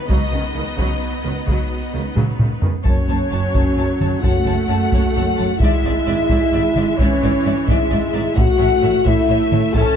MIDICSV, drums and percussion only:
0, 0, Header, 1, 2, 480
1, 0, Start_track
1, 0, Tempo, 459770
1, 101, Time_signature, 12, 3, 24, 8
1, 10402, End_track
2, 0, Start_track
2, 0, Title_t, "Taiko and cinematic ensemble drums"
2, 99, Note_on_c, 9, 41, 69
2, 204, Note_off_c, 9, 41, 0
2, 821, Note_on_c, 9, 41, 64
2, 926, Note_off_c, 9, 41, 0
2, 1542, Note_on_c, 9, 41, 69
2, 1646, Note_off_c, 9, 41, 0
2, 2263, Note_on_c, 9, 45, 75
2, 2367, Note_off_c, 9, 45, 0
2, 2499, Note_on_c, 9, 45, 79
2, 2603, Note_off_c, 9, 45, 0
2, 2735, Note_on_c, 9, 43, 79
2, 2840, Note_off_c, 9, 43, 0
2, 2978, Note_on_c, 9, 41, 80
2, 3082, Note_off_c, 9, 41, 0
2, 3700, Note_on_c, 9, 41, 78
2, 3804, Note_off_c, 9, 41, 0
2, 4180, Note_on_c, 9, 47, 48
2, 4285, Note_off_c, 9, 47, 0
2, 4420, Note_on_c, 9, 41, 76
2, 4524, Note_off_c, 9, 41, 0
2, 5138, Note_on_c, 9, 41, 77
2, 5242, Note_off_c, 9, 41, 0
2, 5847, Note_on_c, 9, 41, 92
2, 5952, Note_off_c, 9, 41, 0
2, 6571, Note_on_c, 9, 41, 71
2, 6676, Note_off_c, 9, 41, 0
2, 7054, Note_on_c, 9, 47, 50
2, 7159, Note_off_c, 9, 47, 0
2, 7297, Note_on_c, 9, 41, 78
2, 7402, Note_off_c, 9, 41, 0
2, 8017, Note_on_c, 9, 41, 77
2, 8122, Note_off_c, 9, 41, 0
2, 8745, Note_on_c, 9, 41, 96
2, 8850, Note_off_c, 9, 41, 0
2, 9457, Note_on_c, 9, 41, 82
2, 9561, Note_off_c, 9, 41, 0
2, 9938, Note_on_c, 9, 47, 55
2, 10043, Note_off_c, 9, 47, 0
2, 10173, Note_on_c, 9, 41, 75
2, 10277, Note_off_c, 9, 41, 0
2, 10402, End_track
0, 0, End_of_file